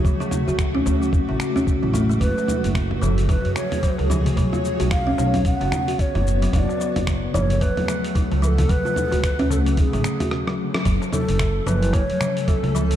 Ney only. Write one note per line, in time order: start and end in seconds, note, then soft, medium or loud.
2.21 2.71 B4 loud
2.96 3.04 B4 medium
3.02 3.28 A4 medium
3.29 3.54 B4 medium
3.56 4.06 C#5 loud
4.92 5.42 F5 loud
5.46 6.02 F#5 loud
6.00 6.43 C#5 medium
6.54 6.60 F5 medium
6.59 7.04 D5 medium
7.34 7.40 D5 loud
7.39 7.63 C#5 loud
7.62 8.16 B4 loud
8.43 8.48 B4 medium
8.47 8.72 A4 medium
8.70 9.51 B4 loud
9.51 9.57 A4 medium
9.78 10.28 G#4 medium
11.13 11.68 A4 medium
11.67 11.95 B4 medium
11.94 12.50 C#5 loud
12.48 12.91 A4 medium